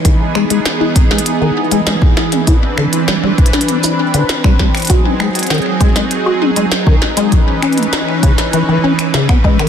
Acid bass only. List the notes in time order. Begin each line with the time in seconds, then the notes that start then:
0.05 D#3
0.35 G#3
0.50 G#3
0.81 E4
0.96 B3
1.11 G#3
1.41 D#3
1.72 G#3
1.87 G#3
2.17 E4
2.32 B3
2.47 E4
2.78 D3
3.08 G3
3.23 G3
3.53 D4
3.69 B3
3.84 E4
4.14 D3
4.44 G3
4.59 G3
4.90 F#4
5.05 C4
5.20 G#3
5.50 D#3
5.81 G#3
5.96 G#3
6.26 F#4
6.41 C4
6.56 G#3
6.87 D#3
7.17 G#3
7.32 E3
7.62 C#4
7.78 G#3
7.93 D#4
8.23 C#3
8.53 E3
8.68 E3
8.84 C#4
9.14 C#3
9.29 B3
9.44 G#3
9.59 D#3